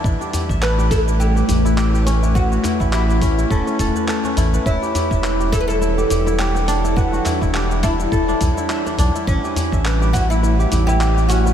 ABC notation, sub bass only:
X:1
M:4/4
L:1/16
Q:"Swing 16ths" 1/4=104
K:Amix
V:1 name="Sub bass" clef=bass
A,,, z2 A,,,6- A,,, A,,,6- | A,,,2 z A,,,4- A,,, E,,, z E,,, z3 A,,, z | E,,, z2 E,,,6- E,,, E,,,6- | E,,,2 z E,,,4- E,,, E,,, z B,,, z3 B,,, z |
A,,, z2 A,,,6- A,,, A,,,6 |]